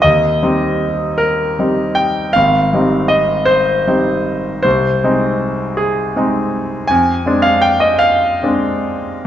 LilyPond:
\new Staff \with { instrumentName = "Grand piano" } { \time 6/8 \key aes \lydian \tempo 4. = 52 << { ees''4. bes'4 g''8 | f''4 ees''8 c''4. | c''4. aes'8 r4 | aes''8. f''16 g''16 ees''16 f''4. | } \\ { ees,8 <g c' ees'>4. <g c' ees'>4 | aes,,8 <g c' ees'>4. <g c' ees'>4 | c,8 <aes c' ees'>4. <aes c' ees'>4 | f,8 <aes c' d'>4. <aes c' d'>4 | } >> }